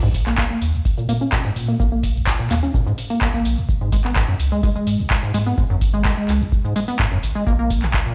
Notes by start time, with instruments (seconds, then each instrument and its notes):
Already playing: sub bass A#1
0.03 acid bass G#2
0.14 kick, open hi-hat, cabasa
0.26 acid bass A#3, clap, cabasa
0.38 acid bass A#3, kick, clap, cabasa
0.50 acid bass A#3
0.62 sub bass D#2, open hi-hat, cabasa
0.74 acid bass A#1, cabasa
0.85 kick, open hi-hat, cabasa
0.98 acid bass A#2, cabasa
1.09 sub bass A#2, acid bass A#3, open hi-hat, cabasa
1.21 acid bass C#4, cabasa
1.32 acid bass A#2, kick, clap, cabasa
1.45 acid bass G#2, cabasa
1.56 sub bass A#2, open hi-hat, cabasa
1.68 acid bass A#3, cabasa
1.80 sub bass A#1, acid bass A#3, kick, cabasa
1.92 acid bass A#3
2.03 kick, open hi-hat, cabasa
2.16 acid bass A#1, cabasa
2.27 kick, clap, cabasa
2.39 acid bass A#2
2.50 sub bass D#2, acid bass A#3, clap, open hi-hat, cabasa
2.63 acid bass C#4, cabasa
2.74 acid bass A#2, kick, cabasa
2.87 acid bass G#2, cabasa
2.98 open hi-hat, cabasa
3.10 acid bass A#3, open hi-hat, cabasa
3.21 acid bass A#3, kick, clap, cabasa
3.34 sub bass G#1, acid bass A#3, cabasa
3.45 sub bass A#1, open hi-hat, cabasa
3.58 acid bass A#1, cabasa
3.69 sub bass G#1, kick, cabasa
3.81 acid bass G#2
3.92 acid bass G#3, kick, open hi-hat, cabasa
4.04 acid bass B3, clap, cabasa
4.16 acid bass G#2, kick, clap, cabasa
4.28 acid bass F#2
4.40 sub bass C#2, open hi-hat, cabasa
4.52 acid bass G#3, cabasa
4.63 acid bass G#3, kick, open hi-hat, cabasa
4.76 acid bass G#3, cabasa
4.87 sub bass G#2, open hi-hat, cabasa
4.99 acid bass G#1, cabasa
5.10 kick, clap, cabasa
5.23 acid bass G#2, cabasa
5.34 sub bass G#2, acid bass G#3, open hi-hat, cabasa
5.46 acid bass B3, cabasa
5.58 sub bass G#1, acid bass G#2, kick, cabasa
5.70 acid bass F#2
5.81 kick, open hi-hat, cabasa
5.94 acid bass G#3, cabasa
6.05 acid bass G#3, kick, clap, cabasa
6.17 acid bass G#3
6.28 sub bass C#2, clap, open hi-hat, cabasa
6.41 acid bass G#1, cabasa
6.52 kick, cabasa
6.64 acid bass G#2, cabasa
6.76 acid bass G#3, open hi-hat, cabasa
6.88 acid bass B3, open hi-hat, cabasa
6.99 acid bass G#2, kick, clap, cabasa
7.12 sub bass F#1, acid bass F#2, cabasa
7.23 sub bass G#1, open hi-hat, cabasa
7.35 acid bass G#3, cabasa
7.47 sub bass A#1, acid bass A#3, kick, cabasa
7.59 acid bass A#3
7.70 kick, open hi-hat, cabasa
7.82 acid bass C#3, clap, cabasa
7.94 kick, clap, cabasa
8.06 acid bass A#2